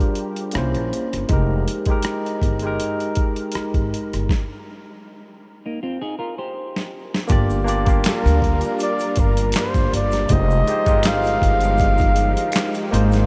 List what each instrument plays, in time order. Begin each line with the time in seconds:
Already playing: tine electric piano G3 D4 F4 G#4 A#4, flugelhorn G4
0.00 kick, closed hi-hat
0.15 closed hi-hat
0.36 closed hi-hat
0.51 tine electric piano A#3 C#4, cross-stick, closed hi-hat
0.56 upright bass C2, tine electric piano E4 C5
0.74 upright bass A#1, closed hi-hat
0.93 closed hi-hat
1.13 upright bass G1, cross-stick, closed hi-hat
1.29 upright bass F1, tine electric piano G#3 D#4 G4, kick, closed hi-hat
1.33 tine electric piano A#4
1.68 closed hi-hat
1.85 tine electric piano G#3 D#4, kick, closed hi-hat
1.90 tine electric piano G4 A#4
2.02 cross-stick, closed hi-hat
2.26 closed hi-hat
2.42 upright bass G1, kick, closed hi-hat
2.59 tine electric piano G#3, closed hi-hat
2.64 tine electric piano D#4 G4 A#4
2.80 closed hi-hat
3.00 closed hi-hat
3.15 kick, closed hi-hat
3.36 closed hi-hat
3.52 muted upright bass stroke, cross-stick, closed hi-hat
3.74 upright bass G#1, kick, closed hi-hat
3.94 closed hi-hat
4.13 upright bass G1, cross-stick, closed hi-hat
4.29 kick, snare
5.66 clean electric guitar A#3 D#4
5.83 clean electric guitar C4 F4
6.02 clean electric guitar D#4 G#4
6.19 clean electric guitar F4 A#4
6.38 clean electric guitar G4 C5
6.76 snare
7.14 snare
7.27 upright bass G1, string machine G3 D4 F4 A#4, tine electric piano A#3 D4 F4 G4, kick, closed hi-hat, shaker
7.32 tine electric piano D5
7.50 shaker
7.64 tine electric piano A#3 D4 F4 G4, shaker
7.68 tine electric piano D5, closed hi-hat
7.85 tine electric piano A#3 D4 F4 G4, kick, closed hi-hat, shaker
7.89 tine electric piano F5
8.04 flugelhorn A#4, finger snap, muted upright bass stroke, snare, clap, closed hi-hat, shaker
8.26 upright bass D2, closed hi-hat, shaker
8.42 kick, closed hi-hat
8.61 closed hi-hat, shaker
8.79 flugelhorn D5, closed hi-hat, shaker
8.99 closed hi-hat, shaker
9.16 upright bass G1, flugelhorn A#4, kick, closed hi-hat, shaker
9.37 closed hi-hat, shaker
9.52 finger snap, snare, closed hi-hat, shaker
9.56 flugelhorn C5, clap
9.74 upright bass G1, kick, closed hi-hat, shaker
9.93 upright bass G1, flugelhorn D5, closed hi-hat
10.11 snare, closed hi-hat, shaker
10.28 upright bass F1, string machine F3 G#3 D#4 G4, tine electric piano G#3 D#4 F4 G4, kick, closed hi-hat, shaker
10.33 tine electric piano C5, flugelhorn D#5
10.51 shaker
10.67 tine electric piano G#3 D#4 F4 G4, closed hi-hat, shaker
10.72 tine electric piano C5
10.86 upright bass G1, tine electric piano G#3 D#4 F4 G4, kick, closed hi-hat, shaker
10.91 tine electric piano A#4
11.03 flugelhorn F5, finger snap, snare, clap, closed hi-hat, shaker
11.24 closed hi-hat, shaker
11.42 upright bass G1, kick, closed hi-hat
11.61 closed hi-hat, shaker
11.77 kick, closed hi-hat, shaker
11.98 kick, closed hi-hat, shaker
12.16 closed hi-hat, shaker
12.37 closed hi-hat, shaker
12.52 finger snap, snare, closed hi-hat, shaker
12.56 clap
12.74 closed hi-hat, shaker
12.91 upright bass G#1, string machine G#3 C4 F4, tine electric piano A#3 D#4 F4 G#4, closed hi-hat
12.95 tine electric piano C5
13.12 snare, closed hi-hat, shaker